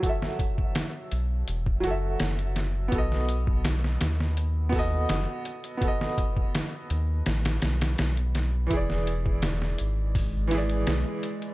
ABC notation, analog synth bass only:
X:1
M:4/4
L:1/8
Q:1/4=83
K:Bdor
V:1 name="Analog synth bass" clef=bass
z3 B,,, E,,, F,,, F,,,2 | B,,,3 ^D,,3 F,,, z | z3 ^D,, A,,, B,,, B,,,2 | E,,,3 G,,,3 B,,, z |]